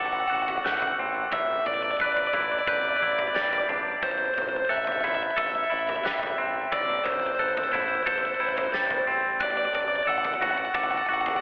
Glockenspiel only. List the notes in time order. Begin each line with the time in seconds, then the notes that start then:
Already playing: D6
0.65 F#6
1.33 E6
2.01 F#6
2.68 G6
3.35 A6
4.03 G6
4.70 F#6
5.38 E6
6.05 F#6
6.72 E6
7.39 F#6
8.07 G6
8.74 A6
9.40 F#6
10.08 E6
10.74 D6